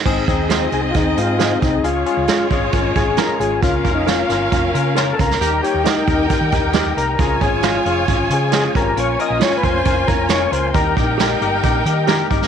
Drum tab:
CC |x---------------|----------------|----------------|----------------|
HH |--x-x-x-x-x-x-x-|x-x-x-x-x-x-x-x-|x-x-x-x-x-x-x-x-|x-x-x-x-x-x-x-x-|
SD |----o-------o---|----o-------o---|----o-o-----o--o|----o-------o---|
BD |o-o-----o-----o-|------o-o-o-----|o-o-----o-----o-|------o-o-o-----|

CC |----------------|----------------|----------------|
HH |x-x-x-x-x-x-x-x-|x-x-x-x-x-x-x-x-|x-x-x-x-x-x-x-x-|
SD |----o-------o---|----o-------o---|----o-------o--o|
BD |o-o-----o-----o-|------o-o-o-----|o-o-----o-----o-|